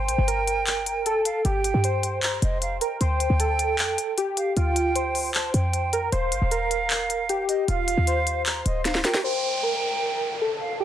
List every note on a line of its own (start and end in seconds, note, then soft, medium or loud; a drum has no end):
0.00 0.10 G1 loud
0.00 0.26 C5 loud
0.00 1.21 G5 loud
0.09 0.18 A#1 loud
0.09 closed hi-hat medium
0.18 1.31 G1 loud
0.28 1.02 A#4 medium
0.28 closed hi-hat medium
0.47 closed hi-hat medium
0.67 clap loud
0.67 closed hi-hat medium
0.86 closed hi-hat medium
1.06 1.43 A4 medium
1.06 closed hi-hat medium
1.25 1.44 F5 medium
1.25 closed hi-hat medium
1.45 1.73 G1 loud
1.45 1.82 G4 loud
1.45 2.19 G5 loud
1.45 closed hi-hat medium
1.64 closed hi-hat medium
1.74 2.40 G2 loud
1.84 2.78 C5 medium
1.84 closed hi-hat medium
2.03 closed hi-hat medium
2.23 2.41 A#5 medium
2.23 clap loud
2.23 closed hi-hat medium
2.42 2.80 F1 loud
2.42 2.61 D#5 loud
2.42 closed hi-hat medium
2.62 2.80 F5 medium
2.62 closed hi-hat medium
2.81 2.99 A#4 medium
2.81 3.00 G5 medium
2.81 closed hi-hat medium
3.01 3.29 D2 loud
3.01 3.37 C5 loud
3.01 4.13 G5 loud
3.01 closed hi-hat medium
3.20 closed hi-hat medium
3.30 3.80 D2 loud
3.40 4.14 A4 medium
3.40 closed hi-hat medium
3.59 closed hi-hat medium
3.79 3.97 F2 loud
3.79 clap loud
3.79 closed hi-hat medium
3.98 closed hi-hat medium
4.18 4.54 G4 medium
4.18 closed hi-hat medium
4.37 4.56 F5 medium
4.37 closed hi-hat medium
4.57 5.50 D2 loud
4.57 4.93 F4 loud
4.57 5.31 G5 loud
4.57 closed hi-hat medium
4.76 closed hi-hat medium
4.95 5.89 C5 medium
4.95 closed hi-hat medium
5.15 open hi-hat medium
5.34 5.53 A5 medium
5.34 clap loud
5.34 closed hi-hat medium
5.54 6.10 F2 loud
5.54 6.09 G5 medium
5.54 closed hi-hat medium
5.73 closed hi-hat medium
5.93 6.10 A#4 medium
5.93 closed hi-hat medium
6.12 6.33 D#1 loud
6.12 6.49 C5 loud
6.12 7.45 F5 loud
6.12 closed hi-hat medium
6.32 6.41 G1 loud
6.32 closed hi-hat loud
6.42 7.55 D#1 loud
6.51 7.25 A#4 medium
6.51 closed hi-hat medium
6.71 closed hi-hat medium
6.90 clap loud
6.90 closed hi-hat medium
7.10 closed hi-hat medium
7.29 7.66 G4 medium
7.29 closed hi-hat medium
7.49 7.67 D#5 medium
7.49 closed hi-hat medium
7.68 7.96 D#1 loud
7.68 8.05 F4 loud
7.68 8.42 F5 loud
7.68 closed hi-hat medium
7.88 closed hi-hat medium
7.97 8.63 D#2 loud
8.07 9.01 C5 medium
8.07 closed hi-hat medium
8.27 closed hi-hat medium
8.46 8.65 A#5 medium
8.46 clap loud
8.46 closed hi-hat medium
8.66 9.03 D1 loud
8.66 8.84 D#5 medium
8.66 closed hi-hat medium
8.85 9.04 F5 medium
8.85 snare medium
8.85 closed hi-hat medium
8.95 snare medium
9.05 9.22 A#4 medium
9.05 9.23 G5 medium
9.05 snare loud
9.05 closed hi-hat medium
9.14 snare loud
9.24 9.61 C5 medium
9.24 10.34 G5 loud
9.24 downlifter medium
9.63 10.37 A#4 medium
10.41 10.78 A4 medium
10.60 10.79 F5 medium
10.80 10.84 G4 loud
10.80 10.84 G5 loud